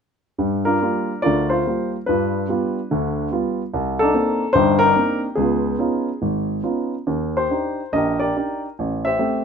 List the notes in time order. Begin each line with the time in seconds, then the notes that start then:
0.38 G2 G3
0.65 D4 F4 A#4
0.82 G3 A#3 F4
1.22 D2 D3 F4 A#4 D5
1.50 F4 C5
1.66 G3 A#3 F4
2.06 G2 D4 F4 B4
2.49 G3 B3 F4
2.91 D2 D3
3.32 G3 B3 F4
3.74 C2
3.99 D4 D#4 A4
4.14 A#3 C4 D4 D#4
4.53 G1 G2 D#4 G4 C5
4.79 A#4
4.83 D4 D#4
4.96 A#3 C4 D4 D#4
5.35 C#2 G#4
5.40 B3 F4
5.79 B3 C#4 D#4 F4
6.22 G#1
6.63 B3 C#4 D#4 F4
7.07 D#2
7.37 G4 C5
7.50 D4 D#4 G4
7.93 A#1 G4 A#4 D#5
8.20 G4 A#4 D5
8.36 D4 D#4 G4
8.79 A1
9.05 G4 C5 E5
9.19 A3 C4 G4